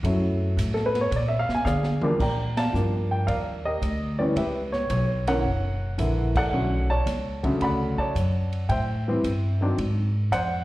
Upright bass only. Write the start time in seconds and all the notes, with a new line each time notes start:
0.03 F#2
0.57 A2
1.11 A#2
1.49 muted upright bass stroke
1.65 D3
2.19 A#2
2.73 G2
3.28 D#2
3.82 D2
4.36 C#2
4.90 B1
5.44 F#1
5.98 A#1
6.51 B1
7.06 C#2
7.61 D2
7.98 muted upright bass stroke
8.15 F#2
8.69 A2
9.24 G2
9.78 G#2
10.31 F2